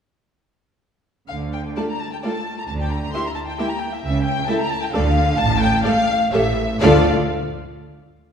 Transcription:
1.29 D2 D3 F5
1.53 G5
1.76 A3 F4 A4 D5 A5
1.90 A#5
2.00 A5
2.12 G5
2.23 A3 F4 A4 D5 A5
2.59 A#5
2.68 D2 D3 A5
2.81 G5
2.92 A#5
3.04 A#5
3.13 A#3 E4 G4 E5 C6
3.26 A#5
3.35 A5
3.48 G5
3.57 A#3 E4 G4 E5 G5
3.69 A#5
3.80 G5
3.92 E5
4.03 C#2 C#3 E5
4.25 G5
4.48 A3 E4 A4 E5 A5
4.60 A#5
4.70 A5
4.83 G5
4.93 D2 D3 A3 A4 D5 F5
5.39 A1 A2 A5
5.61 G5
5.85 A3 A4 D5 F5
6.32 A1 A2 A3 G4 A4 C#5 E5
6.81 D2 D3 A3 F4 A4 D5 F5

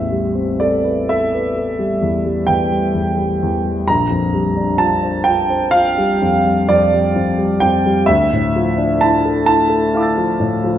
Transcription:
Already playing: A1 E2 E5
0.12 G3
0.35 C4
0.60 A4 D5
0.84 B4
1.09 A4 E5
1.34 B4
1.56 A4
1.79 G3
2.02 E2
2.26 G3
2.47 E2 G5
2.70 G3
2.95 E2
3.17 G3
3.43 E2
3.65 G3
3.88 A#1 A#5
4.11 F2
4.34 G3
4.57 D4
4.78 F4 A5
5.03 C5
5.24 F4 G5
5.50 C5
5.71 F4 F5
5.98 G3
6.22 F2
6.46 G3
6.69 F2 D5
6.93 G3
7.16 F2
7.38 G3
7.60 F2 G5
7.86 G3
8.06 D2 E5
8.33 A2
8.56 F3
8.78 D4
9.01 E4 A5
9.25 A4
9.46 E4 A5
9.70 A4
9.94 E4 F5 D6
10.00 E6 A6
10.18 F3
10.40 A2
10.64 F3

